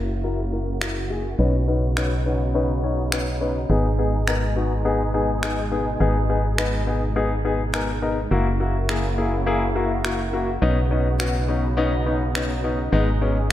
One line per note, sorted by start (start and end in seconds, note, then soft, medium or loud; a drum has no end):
0.00 1.35 F#1 medium
0.00 1.37 C#3 medium
0.00 1.37 A#3 medium
0.00 1.37 E4 medium
0.00 3.66 F#4 medium
0.23 0.38 E4 loud
0.23 0.38 F#4 medium
0.23 0.38 A#4 loud
0.52 0.67 E4 medium
0.52 0.67 F#4 medium
0.52 0.67 A#4 medium
0.81 0.96 E4 medium
0.81 0.96 F#4 medium
0.81 0.96 A#4 medium
0.81 finger snap loud
1.10 1.24 E4 medium
1.10 1.25 F#4 medium
1.10 1.25 G#4 medium
1.39 3.66 B1 medium
1.39 3.68 C#3 medium
1.39 3.68 B3 medium
1.39 1.53 C#4 loud
1.39 1.53 D#4 medium
1.39 8.27 D#4 medium
1.39 1.54 B4 loud
1.68 1.82 C#4 medium
1.68 1.82 D#4 medium
1.68 1.82 B4 medium
1.97 2.11 C#4 medium
1.97 2.11 D#4 medium
1.97 2.11 B4 medium
1.97 finger snap loud
2.26 2.40 C#4 medium
2.26 2.40 D#4 medium
2.26 2.40 B4 medium
2.54 2.69 C#4 loud
2.54 2.69 D#4 loud
2.54 2.69 B4 loud
2.83 2.98 C#4 medium
2.83 2.98 D#4 medium
2.83 2.98 C#5 medium
3.12 3.27 C#4 medium
3.12 3.27 D#4 medium
3.12 3.27 B4 medium
3.12 finger snap loud
3.41 3.55 C#4 medium
3.41 3.55 D#4 medium
3.41 3.56 B4 medium
3.69 5.97 G#1 medium
3.69 8.27 B2 medium
3.69 8.28 G#3 medium
3.69 3.84 B3 loud
3.69 3.84 D#4 medium
3.69 8.27 G#4 medium
3.69 3.84 G#4 loud
3.99 4.13 B3 medium
3.99 4.13 D#4 medium
3.99 4.13 G#4 medium
4.27 4.42 B3 medium
4.27 4.42 D#4 medium
4.27 4.42 A#4 medium
4.27 finger snap loud
4.56 4.71 B3 medium
4.56 4.71 D#4 medium
4.56 4.71 F#4 medium
4.85 5.00 B3 loud
4.85 5.00 D#4 medium
4.85 5.00 G#4 loud
5.14 5.28 B3 medium
5.14 5.29 D#4 medium
5.14 5.29 G#4 medium
5.43 5.57 B3 medium
5.43 5.57 D#4 medium
5.43 5.57 G#4 medium
5.43 finger snap loud
5.72 5.86 B3 medium
5.72 5.86 D#4 medium
5.72 5.86 G#4 medium
6.00 8.27 G#1 medium
6.00 6.15 B3 loud
6.00 6.15 D#4 medium
6.00 6.15 G#4 loud
6.29 6.44 B3 medium
6.29 6.44 D#4 medium
6.29 6.44 G#4 medium
6.58 6.73 B3 medium
6.58 6.73 D#4 medium
6.58 6.73 B4 medium
6.58 finger snap loud
6.87 7.01 B3 medium
6.87 7.02 D#4 medium
6.87 7.02 G#4 medium
7.16 7.30 B3 loud
7.16 7.30 D#4 medium
7.16 7.31 G#4 loud
7.45 7.59 B3 medium
7.45 7.59 D#4 medium
7.45 7.59 G#4 medium
7.74 7.88 B3 medium
7.74 7.88 D#4 medium
7.74 7.88 A#4 medium
7.74 8.01 G#5 medium
7.74 finger snap loud
8.02 8.17 B3 medium
8.02 8.17 D#4 medium
8.02 8.17 A#4 medium
8.02 8.29 D#5 medium
8.31 10.58 F#1 medium
8.31 10.60 C#3 medium
8.31 8.46 A#3 loud
8.31 10.60 A#3 medium
8.31 10.60 E4 medium
8.31 8.46 E4 medium
8.31 8.46 F#4 loud
8.60 8.75 A#3 medium
8.60 8.75 E4 medium
8.60 8.75 F#4 medium
8.89 9.03 A#3 medium
8.89 9.03 E4 medium
8.89 9.04 G#4 medium
8.89 finger snap loud
9.18 9.32 A#3 medium
9.18 9.32 E4 medium
9.18 9.32 G#4 medium
9.46 9.61 A#3 loud
9.46 9.61 E4 medium
9.46 9.61 G#4 loud
9.75 9.90 A#3 medium
9.75 9.90 E4 medium
9.75 9.90 F#4 medium
10.04 10.19 A#3 medium
10.04 10.19 E4 medium
10.04 10.19 F#4 medium
10.04 finger snap loud
10.33 10.48 A#3 medium
10.33 10.48 E4 medium
10.33 10.48 F#4 medium
10.62 12.89 B1 medium
10.62 12.91 C#3 medium
10.62 10.76 B3 loud
10.62 12.91 B3 medium
10.62 10.76 C#4 medium
10.62 10.77 D#4 loud
10.62 13.52 D#4 medium
10.91 11.05 B3 medium
10.91 11.05 C#4 medium
10.91 11.06 D#4 medium
11.20 11.34 B3 medium
11.20 11.34 C#4 medium
11.20 11.34 F#4 medium
11.20 finger snap loud
11.48 11.63 B3 medium
11.48 11.63 C#4 medium
11.48 11.63 D#4 medium
11.77 11.92 B3 loud
11.77 11.92 C#4 medium
11.77 11.92 D#4 loud
12.06 12.21 B3 medium
12.06 12.21 C#4 medium
12.06 12.21 D#4 medium
12.35 12.50 B3 medium
12.35 12.50 C#4 medium
12.35 12.50 D#4 medium
12.35 finger snap loud
12.64 12.78 B3 medium
12.64 12.78 C#4 medium
12.64 12.79 D#4 medium
12.92 13.52 G#1 medium
12.92 13.52 B2 medium
12.92 13.07 G#3 loud
12.92 13.52 G#3 medium
12.92 13.07 B3 medium
12.92 13.07 D#4 loud
12.92 13.52 G#4 medium
13.21 13.36 G#3 medium
13.21 13.36 B3 medium
13.21 13.36 C#4 medium